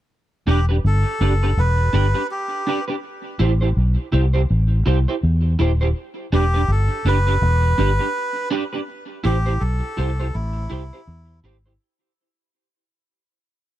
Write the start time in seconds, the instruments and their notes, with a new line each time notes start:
0.47 fingered electric bass E1, clean electric guitar D4 G4 B4, melodica G4
0.69 clean electric guitar D4 G4 B4
0.84 fingered electric bass G1, melodica A4
1.21 fingered electric bass F#1, clean electric guitar D4 G4 B4
1.43 clean electric guitar D4 G4 B4
1.57 fingered electric bass E1, melodica B4
1.93 fingered electric bass G1, clean electric guitar D4 G4 B4
2.14 clean electric guitar D4 G4 B4
2.31 melodica G4
2.67 clean electric guitar D4 G4 B4
2.88 clean electric guitar D4 G4 B4
3.39 fingered electric bass A1, clean electric guitar E4 G4 C5
3.61 clean electric guitar E4 G4 C5
3.77 fingered electric bass B1
4.12 fingered electric bass C2, clean electric guitar E4 G4 C5
4.34 clean electric guitar E4 G4 C5
4.50 fingered electric bass A1
4.86 fingered electric bass C2, clean electric guitar E4 G4 C5
5.08 clean electric guitar E4 G4 C5
5.23 fingered electric bass E2
5.59 fingered electric bass D#1, clean electric guitar E4 G4 C5
5.81 clean electric guitar E4 G4 C5
6.32 fingered electric bass E1, clean electric guitar D4 G4 B4, melodica G4
6.54 clean electric guitar D4 G4 B4
6.68 fingered electric bass G1, melodica A4
7.05 fingered electric bass F#1, clean electric guitar D4 G4 B4, melodica B4
7.27 clean electric guitar D4 G4 B4
7.42 fingered electric bass E1
7.78 fingered electric bass G1, clean electric guitar D4 G4 B4
7.99 clean electric guitar D4 G4 B4
8.50 clean electric guitar D4 G4 B4
8.73 clean electric guitar D4 G4 B4
9.24 fingered electric bass A1, clean electric guitar E4 G4 C5, melodica G4
9.46 clean electric guitar E4 G4 C5
9.60 fingered electric bass B1, melodica A4
9.97 fingered electric bass C2, clean electric guitar E4 G4 C5
10.19 clean electric guitar E4 G4 C5
10.34 fingered electric bass A1, melodica E4
10.70 fingered electric bass C2, clean electric guitar E4 G4 C5
10.93 clean electric guitar E4 G4 C5
11.08 fingered electric bass E2
11.44 fingered electric bass G#1, clean electric guitar E4 G4 C5
11.66 clean electric guitar E4 G4 C5